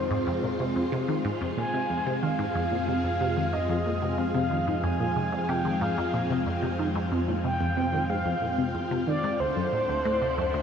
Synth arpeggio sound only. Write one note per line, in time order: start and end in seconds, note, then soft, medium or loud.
0.11 0.16 G#2 loud
0.27 0.36 F2 loud
0.43 0.49 A#2 medium
0.60 0.73 C3 medium
0.76 0.85 F2 medium
0.92 1.06 C3 loud
1.08 1.18 D#3 medium
1.25 1.30 G#2 loud
1.41 1.50 F2 loud
1.57 1.63 A#2 medium
1.74 1.87 C3 medium
1.90 1.99 F2 medium
2.06 2.20 C3 loud
2.23 2.32 D#3 medium
2.39 2.44 G#2 loud
2.55 2.64 F2 loud
2.72 2.77 A#2 medium
2.88 3.01 C3 medium
3.04 3.13 F2 medium
3.21 3.34 C3 loud
3.37 3.46 D#3 medium
3.53 3.58 G#2 loud
3.69 3.78 F2 loud
3.86 3.91 A#2 medium
4.02 4.16 C3 medium
4.18 4.27 F2 medium
4.35 4.48 C3 loud
4.51 4.60 D#3 medium
4.67 4.73 G#2 loud
4.83 4.93 F2 loud
5.00 5.05 A#2 medium
5.16 5.30 C3 medium
5.32 5.42 F2 medium
5.49 5.62 C3 loud
5.65 5.74 D#3 medium
5.81 5.87 G#2 loud
5.98 6.07 F2 loud
6.14 6.19 A#2 medium
6.30 6.44 C3 medium
6.46 6.56 F2 medium
6.63 6.76 C3 loud
6.79 6.88 D#3 medium
6.95 7.01 G#2 loud
7.12 7.21 F2 loud
7.28 7.33 A#2 medium
7.44 7.58 C3 medium
7.61 7.70 F2 medium
7.77 7.91 C3 loud
7.93 8.02 D#3 medium
8.10 8.15 G#2 loud
8.26 8.35 F2 loud
8.42 8.48 A#2 medium
8.58 8.72 C3 medium
8.75 8.84 F2 medium
8.91 9.05 C3 loud
9.07 9.16 D#3 medium
9.24 9.29 G#2 loud
9.40 9.49 D2 loud
9.56 9.62 F#2 medium
9.73 9.86 A2 medium
9.89 9.98 D2 medium
10.05 10.19 A2 loud
10.22 10.31 C3 medium
10.38 10.43 F#2 loud
10.54 10.62 D2 loud